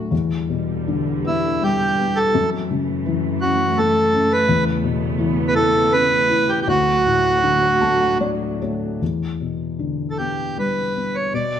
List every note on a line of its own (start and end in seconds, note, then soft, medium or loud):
0.00 0.14 A2 soft
0.00 0.14 D3 soft
0.00 0.14 F#3 soft
0.00 0.14 A3 soft
0.11 2.30 E2 soft
0.11 2.32 E2 medium
0.11 2.32 D3 medium
0.11 2.32 G3 medium
0.49 1.93 B2 soft
0.88 2.30 D3 soft
1.25 1.97 B3 soft
1.25 1.63 E4 medium
1.62 2.32 G3 soft
1.62 2.19 G4 medium
1.98 2.33 B3 soft
2.16 2.50 A4 medium
2.34 4.45 F#2 medium
2.34 4.47 F#2 medium
2.34 4.47 E3 medium
2.34 6.64 A3 medium
2.70 4.09 C#3 soft
3.06 4.44 E3 medium
3.41 4.12 C#4 soft
3.41 3.78 F#4 medium
3.78 4.47 A3 medium
3.78 4.33 A4 medium
4.13 4.47 C#4 medium
4.33 4.64 B4 medium
4.48 6.63 E2 medium
4.48 6.65 E2 medium
4.48 6.65 C#3 medium
4.48 6.65 B3 medium
4.84 6.26 B2 soft
5.18 6.63 E3 medium
5.48 5.54 B4 medium
5.54 6.28 E4 medium
5.54 5.93 A4 medium
5.91 6.65 C#4 medium
5.91 6.51 B4 loud
6.29 6.66 E4 medium
6.49 6.60 G4 medium
6.62 6.68 G4 medium
6.67 8.99 D2 medium
6.67 8.97 D2 medium
6.67 8.99 A2 medium
6.67 8.99 F#3 medium
6.67 8.18 F#4 medium
7.06 8.58 A2 soft
7.43 8.97 D3 soft
7.81 8.60 A3 soft
7.81 8.00 A5 medium
8.01 8.20 F#5 medium
8.20 8.98 F#3 soft
8.20 8.58 D5 medium
8.62 9.00 A3 soft
8.62 8.98 C#5 soft
9.01 11.28 E2 soft
9.41 10.91 B2 soft
9.79 11.28 D3 soft
10.11 10.18 A4 soft
10.18 10.93 B3 soft
10.18 10.58 G4 medium
10.57 11.30 G3 soft
10.57 11.16 B4 medium
10.95 11.31 B3 soft
11.15 11.33 C#5 medium
11.33 11.60 B2 soft
11.33 11.60 D5 medium